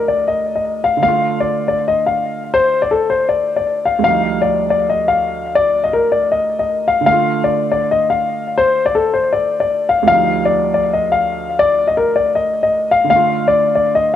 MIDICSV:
0, 0, Header, 1, 3, 480
1, 0, Start_track
1, 0, Tempo, 377358
1, 1304, Time_signature, 4, 2, 24, 8
1, 18006, End_track
2, 0, Start_track
2, 0, Title_t, "Grand piano"
2, 0, Program_c, 0, 0
2, 104, Note_on_c, 0, 74, 75
2, 309, Note_off_c, 0, 74, 0
2, 353, Note_on_c, 0, 75, 78
2, 686, Note_off_c, 0, 75, 0
2, 705, Note_on_c, 0, 75, 73
2, 1043, Note_off_c, 0, 75, 0
2, 1067, Note_on_c, 0, 77, 85
2, 1271, Note_off_c, 0, 77, 0
2, 1305, Note_on_c, 0, 77, 107
2, 1755, Note_off_c, 0, 77, 0
2, 1784, Note_on_c, 0, 74, 82
2, 2118, Note_off_c, 0, 74, 0
2, 2137, Note_on_c, 0, 74, 73
2, 2345, Note_off_c, 0, 74, 0
2, 2389, Note_on_c, 0, 75, 83
2, 2592, Note_off_c, 0, 75, 0
2, 2626, Note_on_c, 0, 77, 75
2, 3189, Note_off_c, 0, 77, 0
2, 3228, Note_on_c, 0, 72, 107
2, 3564, Note_off_c, 0, 72, 0
2, 3586, Note_on_c, 0, 74, 79
2, 3688, Note_off_c, 0, 74, 0
2, 3702, Note_on_c, 0, 69, 84
2, 3908, Note_off_c, 0, 69, 0
2, 3941, Note_on_c, 0, 72, 77
2, 4148, Note_off_c, 0, 72, 0
2, 4182, Note_on_c, 0, 74, 75
2, 4515, Note_off_c, 0, 74, 0
2, 4534, Note_on_c, 0, 74, 72
2, 4877, Note_off_c, 0, 74, 0
2, 4903, Note_on_c, 0, 77, 77
2, 5109, Note_off_c, 0, 77, 0
2, 5139, Note_on_c, 0, 77, 111
2, 5592, Note_off_c, 0, 77, 0
2, 5617, Note_on_c, 0, 74, 77
2, 5958, Note_off_c, 0, 74, 0
2, 5982, Note_on_c, 0, 74, 81
2, 6188, Note_off_c, 0, 74, 0
2, 6228, Note_on_c, 0, 75, 81
2, 6431, Note_off_c, 0, 75, 0
2, 6463, Note_on_c, 0, 77, 79
2, 7027, Note_off_c, 0, 77, 0
2, 7065, Note_on_c, 0, 74, 103
2, 7403, Note_off_c, 0, 74, 0
2, 7425, Note_on_c, 0, 75, 82
2, 7527, Note_off_c, 0, 75, 0
2, 7546, Note_on_c, 0, 70, 87
2, 7750, Note_off_c, 0, 70, 0
2, 7782, Note_on_c, 0, 74, 76
2, 7988, Note_off_c, 0, 74, 0
2, 8034, Note_on_c, 0, 75, 78
2, 8366, Note_off_c, 0, 75, 0
2, 8385, Note_on_c, 0, 75, 72
2, 8723, Note_off_c, 0, 75, 0
2, 8746, Note_on_c, 0, 77, 82
2, 8951, Note_off_c, 0, 77, 0
2, 8983, Note_on_c, 0, 77, 103
2, 9435, Note_off_c, 0, 77, 0
2, 9463, Note_on_c, 0, 74, 82
2, 9794, Note_off_c, 0, 74, 0
2, 9813, Note_on_c, 0, 74, 76
2, 10023, Note_off_c, 0, 74, 0
2, 10064, Note_on_c, 0, 75, 85
2, 10270, Note_off_c, 0, 75, 0
2, 10303, Note_on_c, 0, 77, 77
2, 10867, Note_off_c, 0, 77, 0
2, 10908, Note_on_c, 0, 72, 104
2, 11244, Note_off_c, 0, 72, 0
2, 11265, Note_on_c, 0, 74, 88
2, 11367, Note_off_c, 0, 74, 0
2, 11382, Note_on_c, 0, 69, 83
2, 11588, Note_off_c, 0, 69, 0
2, 11620, Note_on_c, 0, 72, 77
2, 11827, Note_off_c, 0, 72, 0
2, 11862, Note_on_c, 0, 74, 79
2, 12194, Note_off_c, 0, 74, 0
2, 12213, Note_on_c, 0, 74, 73
2, 12556, Note_off_c, 0, 74, 0
2, 12580, Note_on_c, 0, 77, 82
2, 12787, Note_off_c, 0, 77, 0
2, 12816, Note_on_c, 0, 77, 122
2, 13271, Note_off_c, 0, 77, 0
2, 13297, Note_on_c, 0, 74, 80
2, 13638, Note_off_c, 0, 74, 0
2, 13662, Note_on_c, 0, 74, 81
2, 13868, Note_off_c, 0, 74, 0
2, 13908, Note_on_c, 0, 75, 82
2, 14112, Note_off_c, 0, 75, 0
2, 14143, Note_on_c, 0, 77, 85
2, 14707, Note_off_c, 0, 77, 0
2, 14745, Note_on_c, 0, 74, 108
2, 15083, Note_off_c, 0, 74, 0
2, 15105, Note_on_c, 0, 75, 88
2, 15207, Note_off_c, 0, 75, 0
2, 15227, Note_on_c, 0, 70, 88
2, 15431, Note_off_c, 0, 70, 0
2, 15463, Note_on_c, 0, 74, 80
2, 15669, Note_off_c, 0, 74, 0
2, 15713, Note_on_c, 0, 75, 80
2, 16046, Note_off_c, 0, 75, 0
2, 16066, Note_on_c, 0, 75, 76
2, 16403, Note_off_c, 0, 75, 0
2, 16427, Note_on_c, 0, 77, 85
2, 16631, Note_off_c, 0, 77, 0
2, 16665, Note_on_c, 0, 77, 102
2, 17116, Note_off_c, 0, 77, 0
2, 17143, Note_on_c, 0, 74, 84
2, 17477, Note_off_c, 0, 74, 0
2, 17496, Note_on_c, 0, 74, 74
2, 17705, Note_off_c, 0, 74, 0
2, 17745, Note_on_c, 0, 75, 87
2, 17950, Note_off_c, 0, 75, 0
2, 18006, End_track
3, 0, Start_track
3, 0, Title_t, "Felt piano"
3, 0, Program_c, 1, 0
3, 0, Control_c, 1, 64, 127
3, 0, Note_on_c, 1, 38, 71
3, 0, Note_on_c, 1, 53, 65
3, 0, Note_on_c, 1, 55, 57
3, 0, Note_on_c, 1, 63, 75
3, 1218, Note_off_c, 1, 38, 0
3, 1234, Note_on_c, 1, 50, 62
3, 1242, Note_off_c, 1, 53, 0
3, 1265, Note_off_c, 1, 55, 0
3, 1289, Note_off_c, 1, 63, 0
3, 1304, Note_on_c, 1, 57, 61
3, 1322, Control_c, 1, 64, 0
3, 1376, Note_on_c, 1, 65, 75
3, 1540, Control_c, 1, 64, 127
3, 5058, Note_off_c, 1, 50, 0
3, 5074, Note_on_c, 1, 38, 71
3, 5093, Note_off_c, 1, 57, 0
3, 5121, Note_on_c, 1, 53, 65
3, 5129, Note_off_c, 1, 65, 0
3, 5162, Control_c, 1, 64, 0
3, 5169, Note_on_c, 1, 55, 58
3, 5216, Note_on_c, 1, 63, 79
3, 5348, Control_c, 1, 64, 127
3, 8898, Note_off_c, 1, 38, 0
3, 8915, Note_on_c, 1, 50, 62
3, 8922, Note_off_c, 1, 53, 0
3, 8945, Note_off_c, 1, 55, 0
3, 8969, Note_off_c, 1, 63, 0
3, 8986, Note_on_c, 1, 57, 62
3, 8997, Control_c, 1, 64, 0
3, 9057, Note_on_c, 1, 65, 73
3, 9232, Control_c, 1, 64, 127
3, 12739, Note_off_c, 1, 50, 0
3, 12753, Note_on_c, 1, 38, 71
3, 12774, Note_off_c, 1, 57, 0
3, 12800, Note_on_c, 1, 53, 67
3, 12810, Note_off_c, 1, 65, 0
3, 12838, Control_c, 1, 64, 0
3, 12848, Note_on_c, 1, 55, 60
3, 12895, Note_on_c, 1, 63, 78
3, 13064, Control_c, 1, 64, 127
3, 16577, Note_off_c, 1, 38, 0
3, 16594, Note_on_c, 1, 50, 64
3, 16601, Note_off_c, 1, 53, 0
3, 16625, Note_off_c, 1, 55, 0
3, 16649, Note_off_c, 1, 63, 0
3, 16665, Note_on_c, 1, 57, 62
3, 16680, Control_c, 1, 64, 0
3, 16736, Note_on_c, 1, 65, 74
3, 16917, Control_c, 1, 64, 127
3, 18006, Note_off_c, 1, 50, 0
3, 18006, Note_off_c, 1, 57, 0
3, 18006, Note_off_c, 1, 65, 0
3, 18006, End_track
0, 0, End_of_file